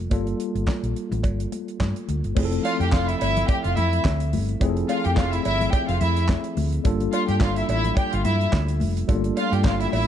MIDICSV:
0, 0, Header, 1, 5, 480
1, 0, Start_track
1, 0, Key_signature, -1, "major"
1, 0, Tempo, 560748
1, 98, Time_signature, 4, 2, 24, 8
1, 8620, End_track
2, 0, Start_track
2, 0, Title_t, "Violin section"
2, 0, Program_c, 0, 48
2, 2262, Note_on_c, 0, 77, 111
2, 2266, Note_on_c, 0, 65, 93
2, 2372, Note_off_c, 0, 77, 0
2, 2375, Note_off_c, 0, 65, 0
2, 2404, Note_on_c, 0, 79, 94
2, 2405, Note_on_c, 0, 67, 84
2, 2488, Note_off_c, 0, 67, 0
2, 2488, Note_off_c, 0, 79, 0
2, 2502, Note_on_c, 0, 65, 77
2, 2503, Note_on_c, 0, 77, 84
2, 2612, Note_off_c, 0, 65, 0
2, 2613, Note_off_c, 0, 77, 0
2, 2638, Note_on_c, 0, 64, 77
2, 2638, Note_on_c, 0, 76, 92
2, 2724, Note_off_c, 0, 64, 0
2, 2724, Note_off_c, 0, 76, 0
2, 2738, Note_on_c, 0, 76, 116
2, 2740, Note_on_c, 0, 64, 106
2, 2934, Note_off_c, 0, 76, 0
2, 2936, Note_off_c, 0, 64, 0
2, 2980, Note_on_c, 0, 67, 87
2, 2981, Note_on_c, 0, 79, 84
2, 3091, Note_off_c, 0, 67, 0
2, 3092, Note_off_c, 0, 79, 0
2, 3117, Note_on_c, 0, 77, 92
2, 3119, Note_on_c, 0, 65, 79
2, 3204, Note_off_c, 0, 77, 0
2, 3205, Note_off_c, 0, 65, 0
2, 3218, Note_on_c, 0, 76, 96
2, 3220, Note_on_c, 0, 64, 85
2, 3414, Note_off_c, 0, 76, 0
2, 3416, Note_off_c, 0, 64, 0
2, 4180, Note_on_c, 0, 65, 97
2, 4183, Note_on_c, 0, 77, 102
2, 4291, Note_off_c, 0, 65, 0
2, 4292, Note_off_c, 0, 77, 0
2, 4322, Note_on_c, 0, 67, 85
2, 4322, Note_on_c, 0, 79, 95
2, 4407, Note_off_c, 0, 67, 0
2, 4407, Note_off_c, 0, 79, 0
2, 4421, Note_on_c, 0, 65, 86
2, 4424, Note_on_c, 0, 77, 87
2, 4531, Note_off_c, 0, 65, 0
2, 4533, Note_off_c, 0, 77, 0
2, 4554, Note_on_c, 0, 76, 96
2, 4555, Note_on_c, 0, 64, 82
2, 4642, Note_off_c, 0, 64, 0
2, 4642, Note_off_c, 0, 76, 0
2, 4661, Note_on_c, 0, 76, 126
2, 4666, Note_on_c, 0, 64, 110
2, 4855, Note_off_c, 0, 76, 0
2, 4858, Note_off_c, 0, 64, 0
2, 4896, Note_on_c, 0, 67, 82
2, 4896, Note_on_c, 0, 79, 101
2, 5008, Note_off_c, 0, 67, 0
2, 5008, Note_off_c, 0, 79, 0
2, 5032, Note_on_c, 0, 77, 95
2, 5033, Note_on_c, 0, 65, 82
2, 5120, Note_off_c, 0, 77, 0
2, 5121, Note_off_c, 0, 65, 0
2, 5141, Note_on_c, 0, 76, 100
2, 5145, Note_on_c, 0, 64, 86
2, 5335, Note_off_c, 0, 76, 0
2, 5338, Note_off_c, 0, 64, 0
2, 6099, Note_on_c, 0, 65, 104
2, 6100, Note_on_c, 0, 77, 107
2, 6209, Note_off_c, 0, 65, 0
2, 6209, Note_off_c, 0, 77, 0
2, 6236, Note_on_c, 0, 67, 80
2, 6239, Note_on_c, 0, 79, 95
2, 6322, Note_off_c, 0, 67, 0
2, 6324, Note_off_c, 0, 79, 0
2, 6345, Note_on_c, 0, 77, 87
2, 6349, Note_on_c, 0, 65, 82
2, 6452, Note_off_c, 0, 77, 0
2, 6455, Note_off_c, 0, 65, 0
2, 6480, Note_on_c, 0, 76, 88
2, 6482, Note_on_c, 0, 64, 85
2, 6564, Note_off_c, 0, 76, 0
2, 6565, Note_off_c, 0, 64, 0
2, 6584, Note_on_c, 0, 64, 112
2, 6587, Note_on_c, 0, 76, 110
2, 6775, Note_off_c, 0, 64, 0
2, 6777, Note_off_c, 0, 76, 0
2, 6823, Note_on_c, 0, 67, 79
2, 6823, Note_on_c, 0, 79, 92
2, 6930, Note_off_c, 0, 67, 0
2, 6930, Note_off_c, 0, 79, 0
2, 6956, Note_on_c, 0, 65, 87
2, 6957, Note_on_c, 0, 77, 92
2, 7041, Note_off_c, 0, 65, 0
2, 7042, Note_off_c, 0, 77, 0
2, 7058, Note_on_c, 0, 64, 104
2, 7060, Note_on_c, 0, 76, 99
2, 7252, Note_off_c, 0, 64, 0
2, 7252, Note_off_c, 0, 76, 0
2, 8021, Note_on_c, 0, 77, 106
2, 8024, Note_on_c, 0, 65, 91
2, 8128, Note_off_c, 0, 77, 0
2, 8129, Note_off_c, 0, 65, 0
2, 8154, Note_on_c, 0, 79, 93
2, 8157, Note_on_c, 0, 67, 86
2, 8238, Note_off_c, 0, 79, 0
2, 8240, Note_off_c, 0, 67, 0
2, 8260, Note_on_c, 0, 65, 78
2, 8260, Note_on_c, 0, 77, 85
2, 8367, Note_off_c, 0, 65, 0
2, 8367, Note_off_c, 0, 77, 0
2, 8394, Note_on_c, 0, 76, 96
2, 8396, Note_on_c, 0, 64, 79
2, 8478, Note_off_c, 0, 76, 0
2, 8479, Note_off_c, 0, 64, 0
2, 8497, Note_on_c, 0, 64, 96
2, 8498, Note_on_c, 0, 76, 106
2, 8620, Note_off_c, 0, 64, 0
2, 8620, Note_off_c, 0, 76, 0
2, 8620, End_track
3, 0, Start_track
3, 0, Title_t, "Tine electric piano"
3, 0, Program_c, 1, 4
3, 0, Control_c, 1, 64, 127
3, 87, Note_on_c, 1, 55, 64
3, 94, Note_on_c, 1, 58, 61
3, 104, Note_on_c, 1, 65, 66
3, 111, Note_on_c, 1, 69, 71
3, 1987, Note_off_c, 1, 55, 0
3, 1991, Note_off_c, 1, 58, 0
3, 1996, Note_off_c, 1, 65, 0
3, 1999, Note_off_c, 1, 69, 0
3, 2013, Note_on_c, 1, 53, 75
3, 2019, Note_on_c, 1, 57, 72
3, 2024, Note_on_c, 1, 60, 68
3, 2032, Note_on_c, 1, 64, 69
3, 2038, Control_c, 1, 64, 0
3, 2040, Note_on_c, 1, 68, 64
3, 2095, Note_on_c, 1, 69, 87
3, 2096, Note_off_c, 1, 68, 0
3, 2164, Control_c, 1, 64, 127
3, 3907, Note_off_c, 1, 53, 0
3, 3911, Note_off_c, 1, 57, 0
3, 3913, Note_off_c, 1, 60, 0
3, 3917, Note_off_c, 1, 64, 0
3, 3937, Note_on_c, 1, 53, 73
3, 3943, Note_on_c, 1, 57, 72
3, 3948, Note_off_c, 1, 69, 0
3, 3950, Note_on_c, 1, 60, 72
3, 3957, Note_on_c, 1, 64, 70
3, 3963, Note_on_c, 1, 68, 70
3, 4018, Note_off_c, 1, 68, 0
3, 4018, Note_on_c, 1, 69, 74
3, 5826, Note_off_c, 1, 53, 0
3, 5829, Note_off_c, 1, 57, 0
3, 5832, Note_off_c, 1, 60, 0
3, 5836, Note_off_c, 1, 64, 0
3, 5853, Note_on_c, 1, 55, 81
3, 5859, Note_on_c, 1, 58, 69
3, 5866, Note_off_c, 1, 69, 0
3, 5867, Note_on_c, 1, 62, 75
3, 5872, Note_on_c, 1, 65, 68
3, 5878, Control_c, 1, 64, 0
3, 5878, Note_on_c, 1, 69, 90
3, 6037, Control_c, 1, 64, 127
3, 7740, Note_off_c, 1, 55, 0
3, 7743, Note_off_c, 1, 58, 0
3, 7747, Note_off_c, 1, 62, 0
3, 7750, Note_off_c, 1, 65, 0
3, 7752, Note_off_c, 1, 69, 0
3, 7768, Note_on_c, 1, 55, 74
3, 7774, Note_on_c, 1, 57, 54
3, 7781, Note_on_c, 1, 62, 61
3, 7786, Note_on_c, 1, 65, 71
3, 7792, Note_on_c, 1, 69, 80
3, 7829, Note_on_c, 1, 58, 68
3, 7840, Note_off_c, 1, 57, 0
3, 8620, Note_off_c, 1, 55, 0
3, 8620, Note_off_c, 1, 58, 0
3, 8620, Note_off_c, 1, 62, 0
3, 8620, Note_off_c, 1, 65, 0
3, 8620, Note_off_c, 1, 69, 0
3, 8620, End_track
4, 0, Start_track
4, 0, Title_t, "Fingered electric bass"
4, 0, Program_c, 2, 33
4, 99, Note_on_c, 2, 31, 105
4, 274, Note_off_c, 2, 31, 0
4, 471, Note_on_c, 2, 31, 93
4, 550, Note_off_c, 2, 31, 0
4, 712, Note_on_c, 2, 34, 80
4, 791, Note_off_c, 2, 34, 0
4, 952, Note_on_c, 2, 33, 99
4, 1031, Note_off_c, 2, 33, 0
4, 1061, Note_on_c, 2, 31, 91
4, 1237, Note_off_c, 2, 31, 0
4, 1546, Note_on_c, 2, 43, 95
4, 1644, Note_off_c, 2, 43, 0
4, 1790, Note_on_c, 2, 38, 92
4, 1887, Note_off_c, 2, 38, 0
4, 1921, Note_on_c, 2, 31, 81
4, 1998, Note_off_c, 2, 31, 0
4, 2027, Note_on_c, 2, 29, 102
4, 2202, Note_off_c, 2, 29, 0
4, 2396, Note_on_c, 2, 41, 102
4, 2475, Note_off_c, 2, 41, 0
4, 2503, Note_on_c, 2, 29, 86
4, 2680, Note_off_c, 2, 29, 0
4, 2753, Note_on_c, 2, 31, 103
4, 2926, Note_off_c, 2, 31, 0
4, 3125, Note_on_c, 2, 29, 101
4, 3201, Note_off_c, 2, 29, 0
4, 3230, Note_on_c, 2, 41, 116
4, 3404, Note_off_c, 2, 41, 0
4, 3466, Note_on_c, 2, 38, 95
4, 3709, Note_on_c, 2, 31, 103
4, 3722, Note_off_c, 2, 38, 0
4, 3884, Note_off_c, 2, 31, 0
4, 3947, Note_on_c, 2, 29, 105
4, 4122, Note_off_c, 2, 29, 0
4, 4328, Note_on_c, 2, 41, 100
4, 4403, Note_off_c, 2, 41, 0
4, 4423, Note_on_c, 2, 29, 103
4, 4600, Note_off_c, 2, 29, 0
4, 4671, Note_on_c, 2, 31, 100
4, 4845, Note_off_c, 2, 31, 0
4, 5041, Note_on_c, 2, 29, 115
4, 5119, Note_off_c, 2, 29, 0
4, 5150, Note_on_c, 2, 41, 111
4, 5421, Note_off_c, 2, 41, 0
4, 5623, Note_on_c, 2, 38, 114
4, 5799, Note_off_c, 2, 38, 0
4, 5864, Note_on_c, 2, 31, 99
4, 6039, Note_off_c, 2, 31, 0
4, 6237, Note_on_c, 2, 43, 98
4, 6315, Note_off_c, 2, 43, 0
4, 6340, Note_on_c, 2, 31, 91
4, 6516, Note_off_c, 2, 31, 0
4, 6581, Note_on_c, 2, 33, 85
4, 6757, Note_off_c, 2, 33, 0
4, 6963, Note_on_c, 2, 31, 108
4, 7038, Note_off_c, 2, 31, 0
4, 7064, Note_on_c, 2, 43, 116
4, 7238, Note_off_c, 2, 43, 0
4, 7301, Note_on_c, 2, 38, 105
4, 7540, Note_on_c, 2, 29, 116
4, 7552, Note_off_c, 2, 38, 0
4, 7715, Note_off_c, 2, 29, 0
4, 7780, Note_on_c, 2, 31, 112
4, 7955, Note_off_c, 2, 31, 0
4, 8151, Note_on_c, 2, 43, 97
4, 8229, Note_off_c, 2, 43, 0
4, 8256, Note_on_c, 2, 31, 97
4, 8431, Note_off_c, 2, 31, 0
4, 8499, Note_on_c, 2, 33, 89
4, 8620, Note_off_c, 2, 33, 0
4, 8620, End_track
5, 0, Start_track
5, 0, Title_t, "Drums"
5, 95, Note_on_c, 9, 42, 75
5, 97, Note_on_c, 9, 36, 112
5, 97, Note_on_c, 9, 56, 79
5, 98, Note_on_c, 9, 62, 54
5, 180, Note_off_c, 9, 42, 0
5, 183, Note_off_c, 9, 36, 0
5, 183, Note_off_c, 9, 56, 0
5, 184, Note_off_c, 9, 62, 0
5, 230, Note_on_c, 9, 42, 37
5, 315, Note_off_c, 9, 42, 0
5, 341, Note_on_c, 9, 42, 65
5, 427, Note_off_c, 9, 42, 0
5, 476, Note_on_c, 9, 42, 41
5, 561, Note_off_c, 9, 42, 0
5, 569, Note_on_c, 9, 63, 73
5, 577, Note_on_c, 9, 36, 102
5, 581, Note_on_c, 9, 39, 83
5, 582, Note_on_c, 9, 56, 69
5, 586, Note_on_c, 9, 38, 111
5, 655, Note_off_c, 9, 63, 0
5, 663, Note_off_c, 9, 36, 0
5, 666, Note_off_c, 9, 39, 0
5, 668, Note_off_c, 9, 56, 0
5, 672, Note_off_c, 9, 38, 0
5, 716, Note_on_c, 9, 42, 53
5, 802, Note_off_c, 9, 42, 0
5, 825, Note_on_c, 9, 42, 58
5, 911, Note_off_c, 9, 42, 0
5, 957, Note_on_c, 9, 64, 85
5, 962, Note_on_c, 9, 42, 47
5, 1042, Note_off_c, 9, 64, 0
5, 1047, Note_off_c, 9, 42, 0
5, 1057, Note_on_c, 9, 56, 81
5, 1059, Note_on_c, 9, 42, 64
5, 1062, Note_on_c, 9, 36, 96
5, 1142, Note_off_c, 9, 56, 0
5, 1145, Note_off_c, 9, 42, 0
5, 1147, Note_off_c, 9, 36, 0
5, 1199, Note_on_c, 9, 42, 50
5, 1284, Note_off_c, 9, 42, 0
5, 1303, Note_on_c, 9, 62, 57
5, 1304, Note_on_c, 9, 42, 67
5, 1389, Note_off_c, 9, 62, 0
5, 1390, Note_off_c, 9, 42, 0
5, 1441, Note_on_c, 9, 42, 44
5, 1526, Note_off_c, 9, 42, 0
5, 1540, Note_on_c, 9, 56, 66
5, 1542, Note_on_c, 9, 63, 78
5, 1544, Note_on_c, 9, 36, 105
5, 1548, Note_on_c, 9, 39, 96
5, 1554, Note_on_c, 9, 38, 114
5, 1626, Note_off_c, 9, 56, 0
5, 1628, Note_off_c, 9, 63, 0
5, 1630, Note_off_c, 9, 36, 0
5, 1634, Note_off_c, 9, 39, 0
5, 1640, Note_off_c, 9, 38, 0
5, 1679, Note_on_c, 9, 42, 46
5, 1764, Note_off_c, 9, 42, 0
5, 1785, Note_on_c, 9, 63, 78
5, 1786, Note_on_c, 9, 42, 66
5, 1871, Note_off_c, 9, 63, 0
5, 1872, Note_off_c, 9, 42, 0
5, 1919, Note_on_c, 9, 42, 40
5, 2004, Note_off_c, 9, 42, 0
5, 2023, Note_on_c, 9, 49, 116
5, 2026, Note_on_c, 9, 36, 127
5, 2026, Note_on_c, 9, 56, 86
5, 2030, Note_on_c, 9, 62, 63
5, 2109, Note_off_c, 9, 49, 0
5, 2111, Note_off_c, 9, 36, 0
5, 2112, Note_off_c, 9, 56, 0
5, 2116, Note_off_c, 9, 62, 0
5, 2160, Note_on_c, 9, 42, 41
5, 2246, Note_off_c, 9, 42, 0
5, 2267, Note_on_c, 9, 42, 76
5, 2268, Note_on_c, 9, 62, 34
5, 2270, Note_on_c, 9, 56, 93
5, 2353, Note_off_c, 9, 42, 0
5, 2354, Note_off_c, 9, 62, 0
5, 2356, Note_off_c, 9, 56, 0
5, 2402, Note_on_c, 9, 42, 46
5, 2487, Note_off_c, 9, 42, 0
5, 2498, Note_on_c, 9, 63, 84
5, 2503, Note_on_c, 9, 36, 110
5, 2504, Note_on_c, 9, 39, 104
5, 2509, Note_on_c, 9, 38, 127
5, 2510, Note_on_c, 9, 56, 78
5, 2583, Note_off_c, 9, 63, 0
5, 2589, Note_off_c, 9, 36, 0
5, 2589, Note_off_c, 9, 39, 0
5, 2595, Note_off_c, 9, 38, 0
5, 2596, Note_off_c, 9, 56, 0
5, 2642, Note_on_c, 9, 42, 50
5, 2727, Note_off_c, 9, 42, 0
5, 2748, Note_on_c, 9, 42, 76
5, 2754, Note_on_c, 9, 56, 96
5, 2834, Note_off_c, 9, 42, 0
5, 2839, Note_off_c, 9, 56, 0
5, 2881, Note_on_c, 9, 42, 58
5, 2885, Note_on_c, 9, 64, 94
5, 2967, Note_off_c, 9, 42, 0
5, 2971, Note_off_c, 9, 64, 0
5, 2983, Note_on_c, 9, 42, 69
5, 2985, Note_on_c, 9, 36, 118
5, 2985, Note_on_c, 9, 56, 88
5, 3068, Note_off_c, 9, 42, 0
5, 3071, Note_off_c, 9, 36, 0
5, 3071, Note_off_c, 9, 56, 0
5, 3119, Note_on_c, 9, 42, 50
5, 3205, Note_off_c, 9, 42, 0
5, 3226, Note_on_c, 9, 42, 71
5, 3228, Note_on_c, 9, 62, 64
5, 3228, Note_on_c, 9, 64, 80
5, 3312, Note_off_c, 9, 42, 0
5, 3314, Note_off_c, 9, 62, 0
5, 3314, Note_off_c, 9, 64, 0
5, 3363, Note_on_c, 9, 42, 45
5, 3448, Note_off_c, 9, 42, 0
5, 3466, Note_on_c, 9, 36, 127
5, 3466, Note_on_c, 9, 39, 101
5, 3468, Note_on_c, 9, 63, 91
5, 3469, Note_on_c, 9, 56, 75
5, 3472, Note_on_c, 9, 38, 121
5, 3552, Note_off_c, 9, 36, 0
5, 3552, Note_off_c, 9, 39, 0
5, 3554, Note_off_c, 9, 56, 0
5, 3554, Note_off_c, 9, 63, 0
5, 3557, Note_off_c, 9, 38, 0
5, 3597, Note_on_c, 9, 42, 54
5, 3683, Note_off_c, 9, 42, 0
5, 3706, Note_on_c, 9, 46, 68
5, 3711, Note_on_c, 9, 63, 81
5, 3792, Note_off_c, 9, 46, 0
5, 3797, Note_off_c, 9, 63, 0
5, 3841, Note_on_c, 9, 42, 42
5, 3927, Note_off_c, 9, 42, 0
5, 3946, Note_on_c, 9, 42, 82
5, 3947, Note_on_c, 9, 36, 112
5, 3950, Note_on_c, 9, 56, 90
5, 3953, Note_on_c, 9, 62, 56
5, 4032, Note_off_c, 9, 42, 0
5, 4033, Note_off_c, 9, 36, 0
5, 4035, Note_off_c, 9, 56, 0
5, 4039, Note_off_c, 9, 62, 0
5, 4080, Note_on_c, 9, 42, 41
5, 4166, Note_off_c, 9, 42, 0
5, 4186, Note_on_c, 9, 42, 77
5, 4190, Note_on_c, 9, 56, 92
5, 4191, Note_on_c, 9, 62, 36
5, 4272, Note_off_c, 9, 42, 0
5, 4276, Note_off_c, 9, 56, 0
5, 4276, Note_off_c, 9, 62, 0
5, 4321, Note_on_c, 9, 42, 47
5, 4407, Note_off_c, 9, 42, 0
5, 4420, Note_on_c, 9, 63, 88
5, 4424, Note_on_c, 9, 36, 120
5, 4426, Note_on_c, 9, 39, 95
5, 4431, Note_on_c, 9, 38, 119
5, 4432, Note_on_c, 9, 56, 81
5, 4506, Note_off_c, 9, 63, 0
5, 4510, Note_off_c, 9, 36, 0
5, 4511, Note_off_c, 9, 39, 0
5, 4517, Note_off_c, 9, 38, 0
5, 4518, Note_off_c, 9, 56, 0
5, 4562, Note_on_c, 9, 42, 56
5, 4647, Note_off_c, 9, 42, 0
5, 4668, Note_on_c, 9, 42, 78
5, 4670, Note_on_c, 9, 56, 92
5, 4753, Note_off_c, 9, 42, 0
5, 4755, Note_off_c, 9, 56, 0
5, 4803, Note_on_c, 9, 64, 97
5, 4805, Note_on_c, 9, 42, 54
5, 4888, Note_off_c, 9, 64, 0
5, 4891, Note_off_c, 9, 42, 0
5, 4903, Note_on_c, 9, 42, 69
5, 4905, Note_on_c, 9, 36, 111
5, 4906, Note_on_c, 9, 56, 85
5, 4989, Note_off_c, 9, 42, 0
5, 4991, Note_off_c, 9, 36, 0
5, 4991, Note_off_c, 9, 56, 0
5, 5039, Note_on_c, 9, 42, 57
5, 5125, Note_off_c, 9, 42, 0
5, 5143, Note_on_c, 9, 42, 64
5, 5146, Note_on_c, 9, 62, 64
5, 5146, Note_on_c, 9, 64, 93
5, 5228, Note_off_c, 9, 42, 0
5, 5232, Note_off_c, 9, 62, 0
5, 5232, Note_off_c, 9, 64, 0
5, 5277, Note_on_c, 9, 42, 48
5, 5286, Note_on_c, 9, 38, 34
5, 5363, Note_off_c, 9, 42, 0
5, 5372, Note_off_c, 9, 38, 0
5, 5382, Note_on_c, 9, 39, 110
5, 5384, Note_on_c, 9, 36, 113
5, 5384, Note_on_c, 9, 63, 95
5, 5387, Note_on_c, 9, 38, 127
5, 5387, Note_on_c, 9, 56, 79
5, 5467, Note_off_c, 9, 39, 0
5, 5469, Note_off_c, 9, 36, 0
5, 5470, Note_off_c, 9, 63, 0
5, 5472, Note_off_c, 9, 56, 0
5, 5473, Note_off_c, 9, 38, 0
5, 5512, Note_on_c, 9, 42, 54
5, 5598, Note_off_c, 9, 42, 0
5, 5623, Note_on_c, 9, 46, 67
5, 5626, Note_on_c, 9, 63, 88
5, 5708, Note_off_c, 9, 46, 0
5, 5712, Note_off_c, 9, 63, 0
5, 5757, Note_on_c, 9, 42, 48
5, 5843, Note_off_c, 9, 42, 0
5, 5862, Note_on_c, 9, 42, 84
5, 5864, Note_on_c, 9, 56, 82
5, 5865, Note_on_c, 9, 36, 116
5, 5868, Note_on_c, 9, 62, 57
5, 5947, Note_off_c, 9, 42, 0
5, 5950, Note_off_c, 9, 36, 0
5, 5950, Note_off_c, 9, 56, 0
5, 5954, Note_off_c, 9, 62, 0
5, 5995, Note_on_c, 9, 42, 41
5, 6081, Note_off_c, 9, 42, 0
5, 6101, Note_on_c, 9, 42, 68
5, 6106, Note_on_c, 9, 62, 33
5, 6108, Note_on_c, 9, 56, 100
5, 6186, Note_off_c, 9, 42, 0
5, 6191, Note_off_c, 9, 62, 0
5, 6193, Note_off_c, 9, 56, 0
5, 6236, Note_on_c, 9, 42, 46
5, 6321, Note_off_c, 9, 42, 0
5, 6332, Note_on_c, 9, 63, 80
5, 6340, Note_on_c, 9, 36, 118
5, 6342, Note_on_c, 9, 39, 98
5, 6347, Note_on_c, 9, 38, 121
5, 6348, Note_on_c, 9, 56, 85
5, 6418, Note_off_c, 9, 63, 0
5, 6426, Note_off_c, 9, 36, 0
5, 6427, Note_off_c, 9, 39, 0
5, 6433, Note_off_c, 9, 38, 0
5, 6434, Note_off_c, 9, 56, 0
5, 6475, Note_on_c, 9, 42, 53
5, 6560, Note_off_c, 9, 42, 0
5, 6581, Note_on_c, 9, 42, 64
5, 6587, Note_on_c, 9, 56, 99
5, 6667, Note_off_c, 9, 42, 0
5, 6673, Note_off_c, 9, 56, 0
5, 6714, Note_on_c, 9, 42, 50
5, 6718, Note_on_c, 9, 64, 92
5, 6799, Note_off_c, 9, 42, 0
5, 6803, Note_off_c, 9, 64, 0
5, 6819, Note_on_c, 9, 42, 64
5, 6821, Note_on_c, 9, 36, 111
5, 6821, Note_on_c, 9, 56, 98
5, 6905, Note_off_c, 9, 42, 0
5, 6906, Note_off_c, 9, 36, 0
5, 6906, Note_off_c, 9, 56, 0
5, 6956, Note_on_c, 9, 42, 53
5, 7042, Note_off_c, 9, 42, 0
5, 7060, Note_on_c, 9, 42, 68
5, 7061, Note_on_c, 9, 62, 69
5, 7061, Note_on_c, 9, 64, 97
5, 7145, Note_off_c, 9, 42, 0
5, 7147, Note_off_c, 9, 62, 0
5, 7147, Note_off_c, 9, 64, 0
5, 7199, Note_on_c, 9, 42, 45
5, 7285, Note_off_c, 9, 42, 0
5, 7297, Note_on_c, 9, 56, 82
5, 7297, Note_on_c, 9, 63, 81
5, 7301, Note_on_c, 9, 36, 117
5, 7303, Note_on_c, 9, 39, 101
5, 7308, Note_on_c, 9, 38, 127
5, 7383, Note_off_c, 9, 56, 0
5, 7383, Note_off_c, 9, 63, 0
5, 7387, Note_off_c, 9, 36, 0
5, 7388, Note_off_c, 9, 39, 0
5, 7394, Note_off_c, 9, 38, 0
5, 7433, Note_on_c, 9, 42, 56
5, 7519, Note_off_c, 9, 42, 0
5, 7534, Note_on_c, 9, 63, 86
5, 7542, Note_on_c, 9, 46, 66
5, 7620, Note_off_c, 9, 63, 0
5, 7627, Note_off_c, 9, 46, 0
5, 7677, Note_on_c, 9, 42, 48
5, 7762, Note_off_c, 9, 42, 0
5, 7778, Note_on_c, 9, 56, 87
5, 7779, Note_on_c, 9, 42, 84
5, 7780, Note_on_c, 9, 36, 127
5, 7781, Note_on_c, 9, 62, 54
5, 7864, Note_off_c, 9, 56, 0
5, 7865, Note_off_c, 9, 42, 0
5, 7866, Note_off_c, 9, 36, 0
5, 7867, Note_off_c, 9, 62, 0
5, 7911, Note_on_c, 9, 42, 45
5, 7997, Note_off_c, 9, 42, 0
5, 8020, Note_on_c, 9, 42, 68
5, 8020, Note_on_c, 9, 56, 84
5, 8105, Note_off_c, 9, 42, 0
5, 8105, Note_off_c, 9, 56, 0
5, 8156, Note_on_c, 9, 42, 47
5, 8241, Note_off_c, 9, 42, 0
5, 8248, Note_on_c, 9, 63, 86
5, 8256, Note_on_c, 9, 36, 117
5, 8260, Note_on_c, 9, 56, 82
5, 8261, Note_on_c, 9, 39, 101
5, 8267, Note_on_c, 9, 38, 124
5, 8333, Note_off_c, 9, 63, 0
5, 8341, Note_off_c, 9, 36, 0
5, 8346, Note_off_c, 9, 39, 0
5, 8346, Note_off_c, 9, 56, 0
5, 8352, Note_off_c, 9, 38, 0
5, 8393, Note_on_c, 9, 42, 56
5, 8479, Note_off_c, 9, 42, 0
5, 8500, Note_on_c, 9, 56, 92
5, 8501, Note_on_c, 9, 46, 72
5, 8586, Note_off_c, 9, 56, 0
5, 8587, Note_off_c, 9, 46, 0
5, 8620, End_track
0, 0, End_of_file